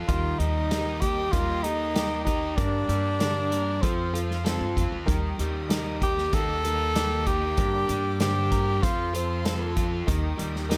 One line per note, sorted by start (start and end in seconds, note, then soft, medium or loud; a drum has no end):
0.07 0.38 D#2 medium
0.07 0.40 D#3 medium
0.07 0.40 G3 medium
0.07 0.40 A#3 medium
0.07 0.54 D#4 medium
0.07 0.40 D#4 medium
0.07 0.40 F4 medium
0.07 0.54 G4 medium
0.07 0.38 G4 medium
0.07 2.56 A#4 medium
0.07 0.54 A#4 loud
0.07 2.56 D#5 medium
0.07 3.79 G5 medium
0.07 2.55 D#6 medium
0.07 kick loud
0.07 closed hi-hat medium
0.38 1.30 D#2 medium
0.38 1.96 G3 medium
0.38 0.71 A#3 soft
0.38 1.02 D#4 medium
0.38 0.72 D#4 soft
0.38 0.71 G4 medium
0.38 closed hi-hat medium
0.71 1.02 D#3 medium
0.71 1.03 G3 medium
0.71 1.03 A#3 medium
0.71 1.16 D#4 medium
0.71 1.03 D#4 medium
0.71 1.16 G4 medium
0.71 1.02 G4 medium
0.71 1.16 A#4 medium
0.71 snare loud
0.71 closed hi-hat medium
1.00 1.33 G4 loud
1.00 1.34 G4 medium
1.00 kick medium
1.00 closed hi-hat medium
1.04 1.33 A#3 soft
1.04 1.34 D#4 medium
1.32 2.54 D#2 medium
1.32 1.65 G3 medium
1.32 1.65 A#3 medium
1.32 1.56 D#4 medium
1.32 1.64 D#4 medium
1.32 1.64 F4 loud
1.32 1.56 G4 medium
1.32 1.63 G4 medium
1.32 1.56 A#4 medium
1.32 kick loud
1.32 closed hi-hat medium
1.63 1.94 A#3 soft
1.63 2.24 D#4 loud
1.63 1.87 D#4 medium
1.63 1.95 D#4 soft
1.63 1.95 G4 medium
1.63 1.87 G4 medium
1.63 1.87 A4 medium
1.63 closed hi-hat medium
1.94 2.27 D#3 medium
1.94 2.27 G3 medium
1.94 2.27 A#3 medium
1.94 2.41 D#4 medium
1.94 2.26 D#4 medium
1.94 2.41 G4 medium
1.94 2.24 G4 medium
1.94 2.41 A#4 medium
1.94 snare loud
1.94 closed hi-hat medium
2.25 2.57 A#3 soft
2.25 2.58 D#4 medium
2.25 2.58 D#4 soft
2.25 2.57 G4 soft
2.25 kick medium
2.25 closed hi-hat medium
2.56 2.89 G2 medium
2.56 2.87 G2 medium
2.56 2.89 D3 medium
2.56 2.90 G3 medium
2.56 2.89 A#3 medium
2.56 3.83 D4 medium
2.56 3.03 D4 medium
2.56 2.88 D4 medium
2.56 3.03 G4 medium
2.56 2.87 G4 medium
2.56 3.81 A#4 medium
2.56 3.03 A#4 loud
2.56 3.82 D5 medium
2.56 3.81 D6 medium
2.56 kick loud
2.56 closed hi-hat medium
2.88 3.79 G2 medium
2.88 3.20 G3 soft
2.88 3.20 A#3 soft
2.88 3.21 D4 soft
2.88 3.20 G4 medium
2.88 closed hi-hat medium
3.19 3.52 G2 medium
3.19 3.52 D3 medium
3.19 3.52 G3 medium
3.19 3.52 A#3 medium
3.19 3.65 D4 medium
3.19 3.51 D4 medium
3.19 3.65 G4 medium
3.19 3.51 G4 medium
3.19 3.65 A#4 medium
3.19 snare loud
3.19 closed hi-hat medium
3.51 3.82 G3 soft
3.51 3.83 A#3 soft
3.51 3.83 D4 medium
3.51 3.83 G4 medium
3.51 3.83 A#4 medium
3.51 closed hi-hat medium
3.82 4.57 F2 medium
3.82 4.14 F3 medium
3.82 4.18 C4 medium
3.82 4.05 C4 medium
3.82 4.15 C4 medium
3.82 4.05 F4 medium
3.82 4.14 F4 medium
3.82 4.05 A4 medium
3.82 5.07 A4 medium
3.82 4.12 A4 medium
3.82 5.07 C5 medium
3.82 5.07 F5 medium
3.82 5.07 C6 medium
3.82 kick loud
3.82 closed hi-hat medium
4.13 4.36 C4 medium
4.13 4.45 C4 soft
4.13 4.36 F4 medium
4.13 4.45 F4 medium
4.13 4.37 A4 medium
4.13 4.45 A4 medium
4.13 closed hi-hat medium
4.31 snare soft
4.44 4.77 F3 medium
4.44 4.90 C4 medium
4.44 4.77 C4 medium
4.44 4.90 F4 medium
4.44 4.76 F4 medium
4.44 4.90 A4 medium
4.44 4.74 A4 medium
4.44 snare loud
4.44 closed hi-hat medium
4.61 4.75 G2 medium
4.76 4.91 F2 medium
4.76 5.07 C4 soft
4.76 5.08 F4 medium
4.76 5.08 A4 soft
4.76 kick medium
4.76 closed hi-hat medium
4.92 5.07 D#2 medium
5.06 5.37 D#2 medium
5.06 5.38 D#3 medium
5.06 5.39 G3 medium
5.06 8.78 A#3 medium
5.06 5.39 A#3 medium
5.06 5.52 D#4 loud
5.06 5.38 D#4 medium
5.06 5.52 G4 medium
5.06 5.37 G4 medium
5.06 5.52 A#4 loud
5.06 7.55 D#5 medium
5.06 8.78 G5 medium
5.06 7.54 D#6 medium
5.06 kick loud
5.06 closed hi-hat medium
5.38 6.29 D#2 medium
5.38 6.96 G3 medium
5.38 5.68 A#3 medium
5.38 5.69 D#4 medium
5.38 5.69 G4 medium
5.38 closed hi-hat medium
5.69 6.01 D#3 medium
5.69 6.01 G3 medium
5.69 6.01 A#3 medium
5.69 6.15 D#4 medium
5.69 6.01 D#4 medium
5.69 6.15 G4 medium
5.69 5.99 G4 medium
5.69 6.15 A#4 medium
5.69 snare loud
5.69 closed hi-hat medium
6.01 6.32 A#3 soft
6.01 6.32 D#4 soft
6.01 6.33 G4 soft
6.01 6.36 G4 loud
6.01 kick medium
6.01 closed hi-hat medium
6.18 snare soft
6.32 7.54 D#2 medium
6.32 6.64 G3 medium
6.32 6.64 A#3 medium
6.32 6.55 D#4 medium
6.32 6.64 D#4 medium
6.32 6.55 G4 medium
6.32 6.62 G4 medium
6.32 7.28 A4 loud
6.32 6.55 A#4 medium
6.32 kick loud
6.32 closed hi-hat medium
6.64 6.94 A#3 soft
6.64 6.87 D#4 medium
6.64 6.95 D#4 medium
6.64 6.95 G4 medium
6.64 6.87 G4 medium
6.64 6.87 A#4 medium
6.64 closed hi-hat medium
6.94 7.26 D#3 medium
6.94 7.27 G3 medium
6.94 7.41 A#3 medium
6.94 7.27 A#3 medium
6.94 7.41 D#4 medium
6.94 7.27 D#4 medium
6.94 7.40 G4 medium
6.94 7.25 G4 medium
6.94 snare loud
6.94 closed hi-hat medium
7.27 7.58 A#3 soft
7.27 7.59 D#4 soft
7.27 7.58 G4 medium
7.27 8.20 G4 loud
7.27 kick medium
7.27 closed hi-hat medium
7.56 7.89 G2 medium
7.56 7.87 G2 medium
7.56 7.89 D3 medium
7.56 7.90 G3 medium
7.56 7.89 A#3 medium
7.56 8.03 D4 medium
7.56 7.89 D4 medium
7.56 8.03 G4 medium
7.56 7.88 G4 medium
7.56 8.03 A#4 loud
7.56 8.81 D5 medium
7.56 8.81 D6 medium
7.56 kick loud
7.56 closed hi-hat medium
7.89 8.79 G2 medium
7.89 8.20 G3 soft
7.89 8.20 A#3 soft
7.89 8.21 D4 medium
7.89 8.20 G4 medium
7.89 closed hi-hat medium
8.20 8.52 G2 medium
8.20 8.52 D3 medium
8.20 8.52 G3 medium
8.20 8.51 A#3 medium
8.20 8.65 D4 medium
8.20 8.50 D4 medium
8.20 8.65 G4 medium
8.20 8.85 G4 medium
8.20 8.49 G4 medium
8.20 8.65 C5 medium
8.20 snare loud
8.20 closed hi-hat medium
8.51 8.82 G3 soft
8.51 8.82 A#3 soft
8.51 8.83 D4 soft
8.51 8.82 G4 medium
8.51 8.83 A#4 medium
8.51 kick medium
8.51 closed hi-hat medium
8.82 10.04 F2 medium
8.82 9.14 F3 medium
8.82 9.05 C4 medium
8.82 9.14 C4 medium
8.82 9.05 F4 medium
8.82 9.14 F4 medium
8.82 9.13 F4 medium
8.82 10.06 A4 medium
8.82 9.05 A4 medium
8.82 9.12 A4 medium
8.82 10.06 C5 medium
8.82 10.06 F5 medium
8.82 10.06 C6 medium
8.82 kick loud
8.82 closed hi-hat medium
9.13 9.36 C4 medium
9.13 9.73 C4 medium
9.13 9.44 C4 soft
9.13 9.36 F4 medium
9.13 9.45 F4 soft
9.13 9.45 A4 medium
9.13 9.36 A4 medium
9.13 closed hi-hat medium
9.45 9.76 F3 medium
9.45 9.90 C4 medium
9.45 9.77 C4 medium
9.45 9.90 F4 medium
9.45 9.76 F4 medium
9.45 9.90 A4 medium
9.45 9.74 A4 medium
9.45 snare loud
9.45 closed hi-hat medium
9.76 10.08 C4 soft
9.76 10.08 F4 soft
9.76 10.07 A4 medium
9.76 kick medium
9.76 closed hi-hat medium
10.07 10.37 D#2 medium
10.07 10.38 D#3 medium
10.07 10.39 G3 medium
10.07 10.39 A#3 medium
10.07 10.52 D#4 loud
10.07 10.38 D#4 loud
10.07 10.52 G4 medium
10.07 10.36 G4 loud
10.07 10.52 A#4 loud
10.07 10.77 A#4 medium
10.07 10.77 G5 medium
10.07 10.77 D#6 medium
10.07 kick loud
10.07 closed hi-hat medium
10.38 10.77 D#2 medium
10.38 10.77 G3 medium
10.38 10.69 A#3 medium
10.38 10.70 D#4 medium
10.38 10.69 G4 medium
10.38 closed hi-hat medium
10.56 snare soft
10.69 10.77 D#3 medium
10.69 10.77 G3 medium
10.69 10.77 A#3 medium
10.69 10.77 D#4 medium
10.69 10.77 G4 medium
10.69 10.77 G4 loud
10.69 10.77 A#4 loud
10.69 snare loud
10.69 closed hi-hat medium